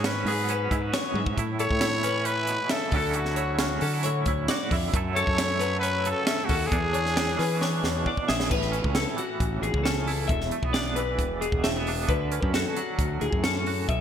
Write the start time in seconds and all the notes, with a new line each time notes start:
Already playing: G#2 F#4 C#5
0.04 C#4 B4, snare, closed hi-hat
0.25 G#2 F#3 B3 G#4, open hi-hat
0.49 C#4 B4, closed hi-hat
0.71 G#2 E4, kick, closed hi-hat
0.82 F#4
0.93 F#2 C#5, snare, closed hi-hat
1.14 G#2 E5, high tom
1.26 kick
1.37 A2 E4, kick, closed hi-hat
1.59 E4 A4 C#5, closed hi-hat
1.71 A2, kick
1.81 E4, snare, closed hi-hat
2.03 E3 C#4 B4, closed hi-hat
2.24 C#4 B4 C#5, closed hi-hat
2.36 E4
2.47 B2, closed hi-hat
2.69 C#3 A4 E5, snare, closed hi-hat
2.91 D2 D3 F#3 C#4 E4 A4, kick, open hi-hat
2.96 F#4
3.13 E4 F#4, closed hi-hat
3.25 snare
3.36 E4 C#5, closed hi-hat
3.59 F#3 C#4 F#4, snare, closed hi-hat
3.81 D3 C#4 A4, open hi-hat
3.93 E4
4.03 A2 E4 C#5, closed hi-hat
4.26 D2 E4, kick, closed hi-hat
4.48 F#4 D5, snare, closed hi-hat
4.71 F2 D3 E4 E5, kick, open hi-hat
4.93 F#2 F#3 A3 E4 A4, kick, closed hi-hat
5.15 A4 C#5, closed hi-hat
5.27 F#2, kick
5.37 E4, snare, closed hi-hat
5.60 F#3 A3 B4, closed hi-hat
5.80 C#4 B4 C#5, closed hi-hat
5.94 E4
6.05 C#3 A4, closed hi-hat
6.11 A4
6.27 C#4 E5, snare, closed hi-hat
6.39 E4
6.45 F#4 A4, open hi-hat
6.49 D#2 C#4, kick
6.60 E4
6.67 G#4
6.71 E2 D4, kick, closed hi-hat
6.94 D4 C#5, closed hi-hat
7.06 snare
7.16 D4, snare, closed hi-hat
7.28 snare
7.37 E3 C#4 B4, snare, open hi-hat
7.61 D4 C#5, snare
7.83 E2 B2 D4, snare
8.06 D4 D5, kick
8.17 kick
8.28 A#1 G#4 E5, snare
8.40 snare
8.50 A1 A2 B4, kick, crash
8.62 snare
8.72 C#4, closed hi-hat
8.84 C#2, kick
8.95 E4 A4, snare, closed hi-hat
9.17 E3 F#4, closed hi-hat
9.40 A1, kick, closed hi-hat
9.62 A1 E2 G#4, closed hi-hat
9.74 C#2, kick
9.84 C#4 A4, snare, closed hi-hat
10.07 E4, open hi-hat
10.28 E1 E2 E5, kick, closed hi-hat
10.41 snare
10.51 A3, closed hi-hat
10.63 B1 B3, kick
10.73 D4 D5, snare, closed hi-hat
10.96 E3 B4, closed hi-hat
11.18 E1, kick, closed hi-hat
11.41 B2 G#4, closed hi-hat
11.52 E1, kick
11.63 A3 E5, snare, closed hi-hat
11.77 B3
11.87 D4, open hi-hat
12.09 D2 D3 B4, kick, closed hi-hat
12.32 C#4, closed hi-hat
12.43 F#2, kick
12.54 F#4 A4, snare, closed hi-hat
12.76 F#3 F#4, closed hi-hat
12.99 D2, kick, closed hi-hat
13.21 D2 A2 G#4, closed hi-hat
13.33 F#2, kick
13.44 C#4 A4, snare, closed hi-hat
13.66 F#4, open hi-hat
13.89 B1 B2 E5, kick, closed hi-hat